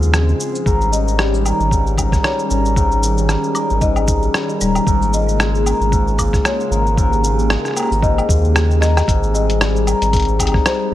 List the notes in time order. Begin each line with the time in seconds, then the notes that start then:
Already playing: D#2 G#2 C#3 F3 G#3 C4 F4 G#4 C5
0.02 shaker
0.14 G#3, cross-stick, shaker
0.29 shaker
0.40 G#4, shaker
0.55 shaker
0.66 G#1 G#2 D#3 G3 C#4 A#4, kick, shaker
0.81 shaker
0.92 D#4 D#5, shaker
1.08 shaker
1.18 G3 G4, cross-stick, shaker
1.34 shaker
1.45 A#4, low woodblock, shaker
1.60 G#1, shaker
1.71 G#2, kick, shaker
1.87 shaker
1.98 D#4, kick, low woodblock, shaker
2.12 kick, cross-stick, shaker
2.23 G3 C#5, cross-stick, shaker
2.39 shaker
2.50 G#1 A#4, shaker
2.65 shaker
2.76 G#2 A#4, kick, shaker
2.91 shaker
3.03 D#4, shaker
3.18 shaker
3.29 G3, cross-stick, shaker
3.44 shaker
3.55 A#4, low woodblock, shaker
3.70 G#1, shaker
3.81 G#2 D#5, kick, shaker
3.96 low woodblock, shaker
4.08 D#4, kick, shaker
4.22 shaker
4.34 G3, cross-stick, shaker
4.49 shaker
4.61 D#1 G3 A#4, shaker
4.75 low woodblock, shaker
4.87 G#1 G#2 C#3 G#3 A#3 A#4, kick, shaker
5.02 shaker
5.13 F4 D#5, shaker
5.29 shaker
5.39 G#3 G#4, cross-stick, shaker
5.55 shaker
5.66 A#4, low woodblock, shaker
5.80 G#1, shaker
5.92 G#2, kick, shaker
6.07 shaker
6.18 F4, kick, low woodblock, shaker
6.33 kick, cross-stick, shaker
6.45 G#3 C#5, cross-stick, shaker
6.60 shaker
6.71 G#1 A#4, shaker
6.87 shaker
6.97 G#2 G4 A#4, kick, shaker
7.13 shaker
7.23 F4, shaker
7.39 shaker
7.50 G#3, cross-stick, shaker
7.65 cross-stick, shaker
7.68 cross-stick
7.71 cross-stick
7.74 A#4, cross-stick
7.76 cross-stick, low woodblock, shaker
7.79 cross-stick, low woodblock
7.83 cross-stick, low woodblock
7.85 cross-stick, low woodblock
7.89 G#1, low woodblock, shaker
8.02 G#1 G#2 D#5, kick, shaker
8.18 low woodblock, shaker
8.29 D#2 F4, kick, shaker
8.45 shaker
8.55 G#3, cross-stick, shaker
8.71 shaker
8.81 A#4 D#5, cross-stick, shaker
8.97 cross-stick, low woodblock, shaker
9.07 G#1 G#2 G3 C4, kick, closed hi-hat, shaker
9.23 shaker
9.34 C4 D#5, shaker
9.50 closed hi-hat, shaker
9.60 G3 G#4, cross-stick, closed hi-hat, shaker
9.76 shaker
9.87 A#4, closed hi-hat, low woodblock, shaker
10.01 G#1, closed hi-hat, shaker
10.13 G#2, kick, closed hi-hat, shaker
10.16 closed hi-hat
10.20 closed hi-hat
10.22 closed hi-hat
10.25 closed hi-hat, shaker
10.39 D#4, kick, closed hi-hat, low woodblock, shaker
10.43 low woodblock
10.46 closed hi-hat, low woodblock
10.48 low woodblock
10.52 kick, cross-stick, low woodblock
10.66 G3 C5, cross-stick, closed hi-hat, shaker